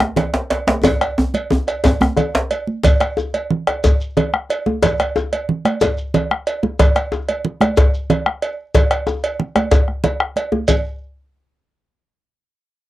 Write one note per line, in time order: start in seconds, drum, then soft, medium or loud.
0.00 bombo rim medium
0.00 djembe slap medium
0.00 high conga medium
0.16 cowbell soft
0.16 djembe slap medium
0.16 djembe tone medium
0.16 low conga medium
0.33 djembe slap soft
0.33 djembe slap medium
0.50 cowbell soft
0.50 djembe slap soft
0.50 djembe slap medium
0.67 bombo rim soft
0.67 djembe slap loud
0.67 high conga medium
0.84 bombo low medium
0.84 cowbell medium
0.84 djembe slap medium
0.84 djembe tone medium
0.84 djembe tone loud
0.84 djembe bass medium
0.84 low conga medium
0.84 shekere medium
1.01 bombo rim medium
1.01 cowbell medium
1.01 djembe slap soft
1.01 high conga soft
1.18 high conga soft
1.18 djembe tone loud
1.34 cowbell medium
1.34 djembe slap soft
1.34 high conga medium
1.50 djembe slap soft
1.50 djembe tone medium
1.50 low conga medium
1.50 shekere soft
1.67 bombo rim soft
1.67 cowbell soft
1.67 djembe slap soft
1.67 shekere soft
1.84 bombo low medium
1.84 cowbell soft
1.84 djembe slap medium
1.84 djembe tone loud
1.84 djembe bass medium
1.84 shekere medium
2.00 bombo rim medium
2.00 djembe slap soft
2.00 high conga medium
2.00 djembe tone loud
2.17 cowbell soft
2.17 djembe tone medium
2.17 low conga medium
2.17 shekere soft
2.34 djembe slap soft
2.34 djembe slap medium
2.50 cowbell soft
2.50 djembe slap soft
2.50 high conga soft
2.50 shekere soft
2.67 high conga soft
2.83 bombo low loud
2.83 cowbell medium
2.83 djembe slap medium
2.83 djembe bass medium
2.83 low conga medium
2.83 shekere medium
3.00 bombo rim medium
3.00 cowbell medium
3.00 djembe slap soft
3.00 high conga soft
3.17 djembe tone medium
3.17 shekere soft
3.34 cowbell medium
3.34 high conga soft
3.51 djembe slap soft
3.51 low conga medium
3.67 bombo rim medium
3.67 cowbell medium
3.67 djembe tone medium
3.84 bombo low loud
3.84 cowbell soft
3.84 djembe slap medium
3.84 djembe bass medium
3.84 shekere medium
4.01 shekere soft
4.17 cowbell soft
4.17 djembe tone medium
4.17 low conga medium
4.33 bombo rim medium
4.33 high conga soft
4.50 cowbell medium
4.50 djembe slap soft
4.50 shekere soft
4.66 djembe tone medium
4.66 high conga medium
4.82 bombo low medium
4.82 cowbell medium
4.82 djembe slap medium
4.82 djembe bass medium
4.82 low conga medium
4.82 shekere medium
4.99 bombo rim medium
4.99 cowbell medium
4.99 djembe slap soft
4.99 high conga soft
5.16 djembe tone medium
5.16 shekere soft
5.33 cowbell medium
5.33 high conga soft
5.49 djembe slap soft
5.49 low conga medium
5.65 bombo rim medium
5.65 cowbell medium
5.65 high conga medium
5.81 bombo low medium
5.81 cowbell medium
5.81 djembe slap medium
5.81 djembe bass medium
5.81 shekere medium
5.98 shekere soft
6.14 cowbell medium
6.14 djembe tone medium
6.14 low conga medium
6.31 bombo rim medium
6.31 high conga soft
6.47 cowbell medium
6.47 djembe slap soft
6.47 shekere soft
6.63 djembe tone medium
6.63 high conga medium
6.79 bombo low loud
6.79 cowbell medium
6.79 djembe slap medium
6.79 djembe bass medium
6.79 low conga medium
6.79 shekere medium
6.95 bombo rim medium
6.95 cowbell soft
6.95 djembe slap soft
6.95 high conga soft
7.12 djembe tone medium
7.12 shekere soft
7.29 cowbell medium
7.29 high conga soft
7.45 djembe slap soft
7.45 low conga medium
7.61 bombo rim medium
7.61 cowbell medium
7.61 high conga medium
7.61 djembe tone medium
7.77 bombo low medium
7.77 cowbell medium
7.77 djembe slap loud
7.77 djembe bass medium
7.77 shekere medium
7.94 shekere soft
8.10 cowbell soft
8.10 djembe tone medium
8.10 low conga medium
8.26 bombo rim medium
8.26 high conga soft
8.42 cowbell soft
8.42 djembe slap soft
8.42 shekere soft
8.75 bombo low loud
8.75 cowbell medium
8.75 djembe slap medium
8.75 high conga soft
8.75 djembe bass medium
8.75 low conga medium
8.75 shekere medium
8.91 bombo rim medium
8.91 cowbell medium
8.91 djembe slap soft
9.07 bombo rim soft
9.07 djembe tone medium
9.07 shekere soft
9.24 cowbell medium
9.24 shekere soft
9.40 bombo rim soft
9.40 high conga soft
9.40 low conga medium
9.56 bombo rim medium
9.56 cowbell medium
9.56 djembe tone medium
9.56 high conga medium
9.71 bombo rim soft
9.71 bombo low loud
9.71 cowbell medium
9.71 djembe slap medium
9.71 high conga soft
9.71 djembe bass medium
9.71 shekere medium
9.88 bombo rim soft
9.88 high conga soft
10.04 cowbell medium
10.04 high conga soft
10.04 djembe tone medium
10.04 low conga medium
10.20 bombo rim medium
10.20 djembe slap soft
10.36 bombo rim soft
10.36 cowbell medium
10.36 djembe slap soft
10.36 high conga soft
10.52 djembe slap soft
10.52 djembe tone medium
10.52 high conga medium
10.68 bombo low medium
10.68 cowbell medium
10.68 low conga medium
10.68 djembe bass medium
10.68 shekere medium